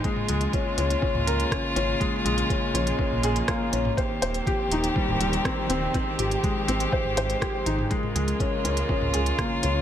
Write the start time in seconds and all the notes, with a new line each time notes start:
Already playing: G#3
0.04 C#3 G#3 A#3 F4, kick, closed hi-hat
0.16 mid tom
0.28 C#2 G#3, closed hi-hat
0.41 closed hi-hat
0.53 C#4, kick, closed hi-hat
0.77 C#2 C#4, closed hi-hat
0.90 closed hi-hat
1.02 C#4, kick
1.14 C#2, mid tom
1.26 C#2 A#4, closed hi-hat
1.40 closed hi-hat
1.51 C#4, kick, cross-stick, closed hi-hat
1.76 G#1 C#4, closed hi-hat
2.00 G#3, kick, closed hi-hat
2.25 A#1 G#3, closed hi-hat
2.38 closed hi-hat
2.50 C#4, kick, closed hi-hat
2.73 A#1 C#4, closed hi-hat
2.87 closed hi-hat
2.99 C#4, kick
3.11 A#1
3.23 A#1 G#4, closed hi-hat
3.36 closed hi-hat
3.48 A#3, kick, cross-stick, closed hi-hat
3.73 A#1 C#4, closed hi-hat
3.85 mid tom
3.97 D#3 C4 G4 C5, kick, closed hi-hat
4.22 D#1 C5, closed hi-hat
4.34 closed hi-hat
4.47 G4, kick, closed hi-hat
4.71 D#1 D#4, closed hi-hat
4.84 closed hi-hat
4.96 G3, kick
5.08 D#1, mid tom
5.20 D#1 G3, closed hi-hat
5.33 closed hi-hat
5.45 C4, kick, cross-stick, closed hi-hat
5.69 D#1 C4, closed hi-hat
5.94 G#3 C4 G4, kick, closed hi-hat
6.18 G#1 G4, closed hi-hat
6.31 closed hi-hat
6.43 G#3, kick, closed hi-hat
6.68 G#1 C4, closed hi-hat
6.80 closed hi-hat
6.92 C5, kick
7.05 G#1
7.17 G#1 C5, closed hi-hat
7.30 closed hi-hat
7.41 G4, kick, cross-stick, closed hi-hat
7.66 G#1 D#4, closed hi-hat
7.79 mid tom
7.91 C#3 G#3 A#3 F4, kick, closed hi-hat
8.03 mid tom
8.15 C#2 G#3, closed hi-hat
8.28 closed hi-hat
8.40 C#4, kick, closed hi-hat
8.64 C#2 C#4, closed hi-hat
8.77 closed hi-hat
8.89 C#4, kick
9.02 C#2, mid tom
9.14 C#2 G#4, closed hi-hat
9.26 closed hi-hat
9.38 A#3, kick, cross-stick, closed hi-hat
9.63 C#2 C#4, closed hi-hat